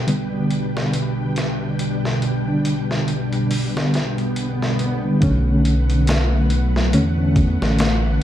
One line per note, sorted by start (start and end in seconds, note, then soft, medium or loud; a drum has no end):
0.00 5.18 B2 medium
0.00 5.18 G3 medium
0.00 5.18 D4 medium
0.00 5.18 B4 medium
0.00 5.18 G5 medium
0.07 0.26 D3 medium
0.07 0.26 G3 medium
0.07 0.27 B3 medium
0.07 closed hi-hat medium
0.31 2.40 D3 medium
0.31 2.41 G3 medium
0.31 2.42 B3 medium
0.51 closed hi-hat medium
0.77 snare soft
0.93 closed hi-hat medium
1.36 snare soft
1.36 closed hi-hat medium
1.79 closed hi-hat medium
2.05 snare soft
2.22 closed hi-hat medium
2.45 3.69 D3 medium
2.45 3.69 G3 medium
2.45 3.70 D4 medium
2.65 closed hi-hat medium
2.91 snare soft
3.08 closed hi-hat medium
3.33 closed hi-hat soft
3.51 open hi-hat medium
3.51 swell medium
3.75 4.02 D3 medium
3.75 4.02 G3 medium
3.75 4.02 B3 medium
3.75 snare soft
3.94 snare soft
3.94 closed hi-hat medium
4.18 closed hi-hat soft
4.36 closed hi-hat medium
4.62 snare soft
4.79 closed hi-hat medium
5.04 5.19 D3 medium
5.04 5.20 G3 medium
5.04 5.21 B3 medium
5.20 6.95 B1 loud
5.20 6.50 D3 medium
5.20 6.50 A3 medium
5.20 8.23 A3 medium
5.20 6.51 C#4 loud
5.20 8.23 B4 medium
5.20 8.23 F#5 medium
5.20 kick loud
5.20 closed hi-hat medium
5.65 closed hi-hat medium
5.90 closed hi-hat soft
6.07 snare loud
6.07 closed hi-hat loud
6.50 closed hi-hat medium
6.76 snare soft
6.93 7.56 E2 medium
6.93 7.12 D3 medium
6.93 7.12 A3 medium
6.93 7.12 C#4 loud
6.93 closed hi-hat medium
7.17 8.23 D3 medium
7.17 8.23 A3 medium
7.17 8.23 C#4 medium
7.36 kick loud
7.36 closed hi-hat medium
7.62 8.19 A1 medium
7.62 snare medium
7.79 snare loud
7.79 closed hi-hat medium